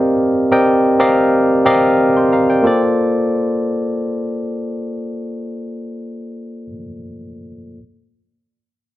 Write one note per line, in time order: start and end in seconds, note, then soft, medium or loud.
0.00 0.51 C4 loud
0.00 0.52 G4 medium
0.00 0.52 A#4 medium
0.00 0.52 D5 medium
0.00 0.52 D#5 medium
0.00 0.15 F5 loud
0.00 0.52 G5 loud
0.51 0.93 C4 medium
0.51 0.93 G4 medium
0.51 0.93 A#4 medium
0.51 0.93 D5 medium
0.51 0.93 D#5 medium
0.51 0.93 G5 medium
0.99 1.56 C4 medium
0.99 1.56 G4 medium
0.99 1.56 A#4 medium
0.99 1.56 D5 medium
0.99 1.57 D#5 medium
0.99 1.57 F5 loud
1.65 2.22 C4 medium
1.65 2.22 G4 medium
1.65 2.22 A#4 medium
1.65 1.99 D5 medium
1.65 1.99 D#5 medium
1.65 1.99 F5 loud
2.17 2.31 G5 medium
2.17 2.31 C6 medium
2.32 2.49 F5 medium
2.32 2.49 A#5 medium
2.50 2.66 D5 medium
2.50 2.81 G5 medium
2.62 6.66 A#3 medium
2.62 6.67 F4 medium
2.62 6.68 A4 medium
2.62 6.69 C5 medium
2.67 6.70 D5 medium